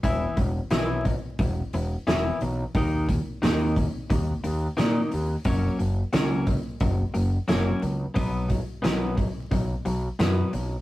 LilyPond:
<<
  \new Staff \with { instrumentName = "Clean electric guitar" } { \clef bass \time 4/4 \key fis \minor \tempo 4 = 89 <e b e'>8 <e b>8 <e b e'>8 b8 <e b>8 <e b>8 <e b e'>8 <e b>8 | <dis ais dis'>8 <dis ais>8 <dis ais dis'>8 <dis ais>8 <dis ais>8 <dis ais>8 <dis ais dis'>8 <dis ais>8 | <fis ais cis'>8 <fis ais>8 <fis ais cis'>8 <fis ais>8 <fis ais>8 <fis ais>8 <fis ais cis'>8 <fis ais>8 | <b, fis b>8 <b, fis>8 <b, fis b>8 <b, fis>8 <b, fis>8 <b, fis>8 <b, fis b>8 <b, fis>8 | }
  \new Staff \with { instrumentName = "Picked electric bass" } { \clef bass \time 4/4 \key fis \minor e,,8 e,,8 b,,4 e,,8 e,,8 e,,8 b,,8 | dis,4 dis,4 dis,8 dis,8 ais,8 dis,8 | fis,,8 fis,,8 cis,4 fis,,8 fis,,8 fis,,8 cis,8 | b,,4 b,,4 b,,8 b,,8 fis,8 b,,8 | }
  \new DrumStaff \with { instrumentName = "Drums" } \drummode { \time 4/4 <hho bd>8 <hho bd>8 <hho sn>8 <hho bd>8 <hho bd>8 hho8 <hho sn>8 hho8 | <hho bd>8 <hho bd>8 <hho sn>8 <hho bd>8 <hho bd>8 hho8 <hho sn>8 hho8 | <hho bd>8 hho8 <hho sn>8 <hho bd>8 <hho bd>8 hho8 <hho sn>8 hho8 | <hho bd>8 <hho bd>8 <hho sn>8 <hho bd>8 <hho bd>8 hho8 <hho sn>8 hho8 | }
>>